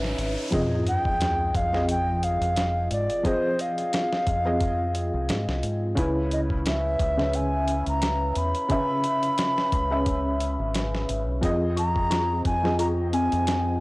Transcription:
0.00 0.18 G#1 medium
0.00 0.53 C#3 medium
0.00 0.54 C#4 medium
0.00 0.53 D#4 medium
0.00 0.14 B4 loud
0.00 0.54 B4 medium
0.00 0.53 E5 medium
0.00 riser medium
0.04 snare medium
0.18 0.34 G#1 medium
0.18 closed hi-hat medium
0.51 1.51 F2 loud
0.51 1.68 F3 medium
0.51 1.68 C4 medium
0.51 1.69 G#4 medium
0.51 1.69 D#5 loud
0.51 kick loud
0.51 closed hi-hat medium
0.51 sub drop medium
0.87 1.58 G5 loud
0.87 closed hi-hat medium
1.05 kick loud
1.21 snare loud
1.21 closed hi-hat medium
1.55 2.38 F2 loud
1.55 1.89 F5 loud
1.55 kick medium
1.55 closed hi-hat medium
1.73 1.87 F3 medium
1.73 1.88 C4 medium
1.73 1.88 G#4 medium
1.73 1.88 D#5 medium
1.73 snare soft
1.89 2.26 G5 loud
1.89 closed hi-hat medium
2.23 2.91 F5 loud
2.23 closed hi-hat medium
2.41 2.88 F2 medium
2.41 closed hi-hat soft
2.56 snare loud
2.56 closed hi-hat medium
2.91 3.07 G#2 medium
2.91 3.28 D5 loud
2.91 closed hi-hat medium
3.10 closed hi-hat soft
3.23 4.40 F3 medium
3.23 4.41 C4 medium
3.23 4.42 G#4 medium
3.23 3.62 C5 loud
3.23 4.42 D#5 loud
3.23 kick loud
3.23 closed hi-hat medium
3.59 5.64 F5 loud
3.59 closed hi-hat medium
3.78 closed hi-hat soft
3.93 snare loud
3.93 closed hi-hat medium
4.13 snare medium
4.27 5.10 F2 loud
4.27 kick medium
4.27 closed hi-hat medium
4.45 4.60 F3 medium
4.45 4.60 C4 medium
4.45 4.60 G#4 medium
4.45 4.60 D#5 medium
4.61 kick loud
4.61 closed hi-hat medium
4.95 closed hi-hat medium
5.14 5.28 C2 medium
5.29 5.46 G#2 loud
5.29 snare loud
5.29 closed hi-hat medium
5.48 5.61 C2 medium
5.48 snare medium
5.63 5.94 G#2 medium
5.63 closed hi-hat medium
5.95 6.97 C#2 loud
5.95 7.13 C#3 loud
5.95 7.13 C#4 medium
5.95 7.14 E4 loud
5.95 7.14 B4 medium
5.95 kick loud
5.95 closed hi-hat medium
6.31 6.41 D#5 medium
6.31 closed hi-hat medium
6.50 kick medium
6.66 7.37 E5 medium
6.66 snare loud
6.66 closed hi-hat medium
6.99 7.83 C#2 loud
6.99 kick loud
6.99 closed hi-hat medium
7.17 7.32 C#3 medium
7.17 7.32 C#4 medium
7.17 7.33 B4 medium
7.17 7.33 E5 medium
7.17 snare soft
7.33 7.88 G#5 loud
7.33 closed hi-hat medium
7.68 closed hi-hat medium
7.86 8.33 C#2 medium
7.86 8.39 A#5 loud
7.86 closed hi-hat soft
8.02 snare loud
8.02 closed hi-hat medium
8.36 8.53 E2 medium
8.36 11.10 B5 loud
8.36 closed hi-hat medium
8.55 closed hi-hat soft
8.69 9.86 C#3 medium
8.69 9.86 C#4 medium
8.69 9.87 B4 medium
8.69 9.87 E5 loud
8.69 kick loud
8.69 closed hi-hat medium
9.04 closed hi-hat medium
9.23 closed hi-hat soft
9.38 snare loud
9.38 closed hi-hat medium
9.58 snare medium
9.72 10.56 C#2 loud
9.72 kick medium
9.72 closed hi-hat medium
9.91 10.05 C#3 medium
9.91 10.05 C#4 medium
9.91 10.06 B4 medium
9.91 10.06 E5 medium
10.06 kick loud
10.06 closed hi-hat medium
10.40 closed hi-hat medium
10.59 11.09 G#1 medium
10.75 snare loud
10.75 closed hi-hat medium
10.95 snare soft
11.09 11.28 G#1 medium
11.09 closed hi-hat medium
11.28 11.41 B1 medium
11.41 12.42 F2 loud
11.41 12.59 F3 medium
11.41 12.59 C4 medium
11.41 13.80 C4 medium
11.41 12.60 G#4 medium
11.41 12.60 D#5 loud
11.41 kick loud
11.41 closed hi-hat medium
11.77 12.09 F4 medium
11.77 12.42 A#5 loud
11.77 closed hi-hat medium
11.96 kick medium
12.11 12.76 F4 medium
12.11 snare loud
12.11 closed hi-hat medium
12.45 13.29 F2 loud
12.45 12.77 G#5 loud
12.45 kick medium
12.45 closed hi-hat medium
12.63 12.78 F3 medium
12.63 12.78 C4 medium
12.63 12.79 G#4 medium
12.63 12.79 D#5 medium
12.63 snare soft
12.79 13.00 F4 medium
12.79 12.87 A#5 loud
12.79 closed hi-hat medium
13.13 13.46 C4 medium
13.13 13.80 G#5 loud
13.13 closed hi-hat medium
13.32 13.79 F2 medium
13.32 closed hi-hat soft
13.47 snare loud
13.47 closed hi-hat medium

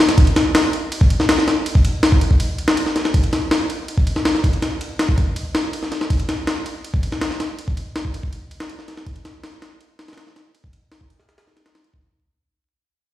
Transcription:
0.09 snare medium
0.09 ride medium
0.18 kick loud
0.18 ride medium
0.27 ride soft
0.36 snare medium
0.36 ride medium
0.55 snare loud
0.55 ride medium
0.73 ride medium
0.92 ride medium
1.01 kick medium
1.10 ride medium
1.20 snare soft
1.29 snare loud
1.29 ride medium
1.38 snare soft
1.48 snare medium
1.48 ride medium
1.66 ride medium
1.75 kick loud
1.85 ride medium
2.03 snare loud
2.03 ride medium
2.12 kick medium
2.21 ride medium
2.31 kick medium
2.40 ride medium
2.58 ride medium
2.68 snare loud
2.77 ride medium
2.86 snare soft
2.96 snare soft
2.96 ride medium
3.05 snare soft
3.14 kick loud
3.14 ride medium
3.23 ride soft
3.33 snare medium
3.33 ride medium
3.51 snare loud
3.51 ride medium
3.70 ride medium
3.88 ride medium
3.98 kick medium
4.07 ride medium
4.16 snare soft
4.25 snare loud
4.25 ride medium
4.35 snare soft
4.44 kick medium
4.44 ride medium
4.53 ride soft
4.62 snare soft
4.62 ride medium
4.81 ride medium
4.99 snare loud
4.99 ride medium
5.09 kick medium
5.18 kick medium
5.18 ride medium
5.36 ride medium
5.55 snare loud
5.55 ride medium
5.73 ride medium
5.83 snare soft
5.92 snare soft
5.92 ride medium
6.01 snare soft
6.10 kick loud
6.10 ride medium
6.20 ride soft
6.29 snare medium
6.29 ride medium
6.47 snare loud
6.47 ride medium
6.66 ride medium
6.84 ride medium
6.94 kick medium
7.03 ride medium
7.12 snare soft
7.21 snare loud
7.21 ride medium
7.31 snare soft
7.40 snare medium
7.40 ride medium
7.59 ride medium
7.68 kick medium
7.77 ride medium
7.96 snare loud
7.96 ride medium
8.05 kick medium
8.14 ride medium
8.23 kick medium
8.33 ride medium
8.51 ride medium
8.60 snare loud
8.69 ride medium
8.79 snare soft
8.88 snare soft
8.88 ride medium
8.97 snare soft
9.06 kick loud
9.06 ride medium
9.16 ride soft
9.25 snare medium
9.25 ride medium
9.44 snare loud
9.44 ride medium
9.62 snare loud
9.62 ride medium
9.81 ride medium
9.99 snare loud
9.99 ride medium
10.08 snare medium
10.08 ride medium
10.13 snare medium
10.13 ride medium
10.17 snare loud
10.17 ride medium
10.27 snare soft
10.36 snare medium
10.36 ride medium
10.55 ride medium
10.64 kick medium
10.73 ride medium
10.92 snare loud
10.92 ride medium
11.01 kick medium
11.10 ride medium
11.20 snare soft
11.29 snare soft
11.29 ride medium
11.38 snare medium
11.38 ride medium
11.47 snare soft
11.57 snare soft
11.57 ride medium
11.66 snare medium
11.66 ride medium
11.75 snare medium
11.75 ride medium
11.84 ride medium
11.94 kick medium

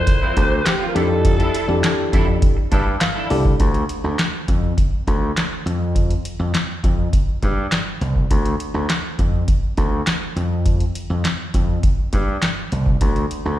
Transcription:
0.00 0.20 C4 medium
0.00 0.20 E4 medium
0.00 0.20 F4 medium
0.00 0.21 A4 medium
0.00 0.67 C5 loud
0.07 muted clean electric guitar stroke soft
0.07 kick loud
0.07 closed hi-hat medium
0.22 0.35 F3 medium
0.22 0.36 C4 medium
0.22 0.36 E4 medium
0.37 0.60 D2 medium
0.37 muted clean electric guitar stroke soft
0.37 kick medium
0.37 closed hi-hat medium
0.51 muted clean electric guitar stroke medium
0.66 0.87 G4 loud
0.66 muted clean electric guitar stroke medium
0.66 snare loud
0.66 clap medium
0.66 closed hi-hat medium
0.80 0.95 F3 medium
0.80 0.94 C4 medium
0.80 0.94 F4 medium
0.88 0.97 A#4 medium
0.95 1.42 F2 loud
0.95 1.06 D4 medium
0.95 1.54 D4 medium
0.95 1.54 E4 medium
0.95 1.06 E4 medium
0.95 1.54 G4 medium
0.95 2.13 A4 loud
0.95 1.54 A4 medium
0.95 1.07 A4 medium
0.95 closed hi-hat medium
1.10 muted clean electric guitar stroke medium
1.25 muted clean electric guitar stroke soft
1.25 kick loud
1.25 closed hi-hat medium
1.39 1.53 D4 medium
1.39 1.54 E4 medium
1.39 1.53 A4 medium
1.39 closed hi-hat medium
1.54 1.65 D4 medium
1.54 1.65 E4 medium
1.54 1.66 A4 medium
1.54 closed hi-hat medium
1.68 1.80 F2 loud
1.68 2.55 D4 medium
1.68 2.55 E4 medium
1.68 2.56 G4 medium
1.68 2.56 A4 medium
1.68 muted clean electric guitar stroke soft
1.83 muted clean electric guitar stroke medium
1.83 snare loud
1.83 clap loud
1.83 closed hi-hat medium
1.98 muted clean electric guitar stroke soft
2.12 2.36 F2 medium
2.12 2.26 D4 medium
2.12 2.27 E4 loud
2.12 2.26 A4 loud
2.12 kick loud
2.12 closed hi-hat medium
2.27 muted clean electric guitar stroke soft
2.42 kick loud
2.42 closed hi-hat medium
2.57 muted clean electric guitar stroke soft
2.71 2.95 G2 medium
2.71 2.85 D4 medium
2.71 2.86 E4 medium
2.71 2.85 A4 medium
2.71 2.99 A5 medium
2.71 kick medium
2.71 closed hi-hat medium
2.87 muted clean electric guitar stroke medium
3.01 3.56 F5 medium
3.01 muted clean electric guitar stroke soft
3.01 snare loud
3.01 clap loud
3.01 closed hi-hat medium
3.15 3.29 D4 medium
3.15 3.30 E4 medium
3.15 3.29 A4 medium
3.30 3.54 C2 loud
3.30 3.52 D4 medium
3.30 3.52 E4 medium
3.30 3.52 G4 medium
3.30 3.52 A4 loud
3.30 muted clean electric guitar stroke soft
3.30 open hi-hat medium
3.45 muted clean electric guitar stroke soft
3.45 kick loud
3.60 3.83 D2 loud
3.60 kick loud
3.60 closed hi-hat medium
3.74 closed hi-hat soft
3.89 closed hi-hat medium
4.04 4.16 D2 medium
4.19 snare loud
4.19 clap medium
4.19 closed hi-hat medium
4.48 4.72 F2 medium
4.48 kick medium
4.48 closed hi-hat medium
4.78 kick loud
4.78 closed hi-hat medium
5.07 5.31 D2 medium
5.07 kick medium
5.07 closed hi-hat medium
5.37 snare loud
5.37 clap medium
5.37 closed hi-hat medium
5.66 6.13 F2 medium
5.66 closed hi-hat medium
5.95 kick medium
5.95 closed hi-hat medium
6.11 closed hi-hat medium
6.25 closed hi-hat medium
6.39 6.51 F2 loud
6.54 snare loud
6.54 clap medium
6.54 closed hi-hat medium
6.84 7.07 F2 medium
6.84 kick loud
6.84 closed hi-hat medium
7.13 kick loud
7.13 closed hi-hat medium
7.42 7.66 G2 medium
7.42 kick medium
7.42 closed hi-hat medium
7.72 snare loud
7.72 clap medium
7.72 closed hi-hat medium
8.01 8.25 C2 medium
8.01 closed hi-hat medium
8.16 kick medium
8.31 8.54 D2 loud
8.31 kick medium
8.31 closed hi-hat medium
8.46 closed hi-hat soft
8.60 closed hi-hat medium
8.74 8.86 D2 medium
8.89 snare loud
8.89 clap medium
8.89 closed hi-hat medium
9.19 9.42 F2 medium
9.19 kick medium
9.19 closed hi-hat medium
9.48 kick loud
9.48 closed hi-hat medium
9.77 10.01 D2 medium
9.77 kick medium
9.77 closed hi-hat medium
10.07 snare loud
10.07 clap medium
10.07 closed hi-hat medium
10.36 10.83 F2 medium
10.36 closed hi-hat medium
10.66 kick medium
10.66 closed hi-hat medium
10.80 closed hi-hat soft
10.95 closed hi-hat medium
11.10 11.22 F2 medium
11.25 snare loud
11.25 clap medium
11.25 closed hi-hat medium
11.54 11.78 F2 medium
11.54 kick medium
11.54 closed hi-hat medium
11.83 kick loud
11.83 closed hi-hat medium
12.13 12.36 G2 medium
12.13 kick medium
12.13 closed hi-hat medium
12.42 snare loud
12.42 clap medium
12.42 closed hi-hat medium
12.72 12.95 C2 loud
12.72 closed hi-hat medium
12.86 kick medium
13.01 13.25 D2 loud
13.01 kick medium
13.01 closed hi-hat medium
13.16 closed hi-hat soft
13.31 closed hi-hat medium
13.45 13.57 D2 medium

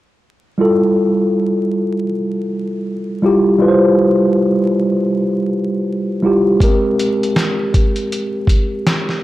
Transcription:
0.58 2.02 G3 medium
0.58 2.03 E4 medium
0.58 2.04 F4 medium
0.58 2.04 A4 medium
3.22 3.57 G3 medium
3.22 3.58 E4 medium
3.22 3.60 F4 medium
3.22 3.60 G4 medium
3.58 5.03 G3 medium
3.58 5.03 E4 medium
3.58 5.04 F4 medium
3.58 3.69 B4 medium
3.68 5.08 C5 medium
6.23 6.59 G3 medium
6.23 6.59 E4 medium
6.23 6.60 F4 medium
6.23 6.60 G4 medium
6.60 8.03 G#3 medium
6.60 6.69 A#3 medium
6.60 8.05 G4 medium
6.60 8.05 A#4 medium
6.60 kick loud
6.60 closed hi-hat medium
6.68 8.07 C4 medium
6.99 closed hi-hat medium
7.23 closed hi-hat soft
7.36 snare medium
7.36 closed hi-hat medium
7.74 kick medium
7.74 closed hi-hat medium
7.96 closed hi-hat soft
8.12 closed hi-hat medium
8.47 kick medium
8.47 closed hi-hat medium
8.87 snare loud
8.87 closed hi-hat medium
9.09 snare soft

